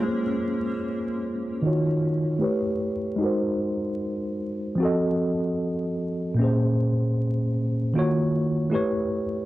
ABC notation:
X:1
M:4/4
L:1/8
Q:"Swing 16ths" 1/4=76
K:Bbm
V:1 name="Tine electric piano"
[B,FAcd]4 [E,EFGd]2 [=A,=E=G=B^c]2 | [A,EGBc]4 [F,CG=Ae]4 | [B,,B,DAc]4 [E,B,FGd]2 [=A,=E=G=B^c]2 |]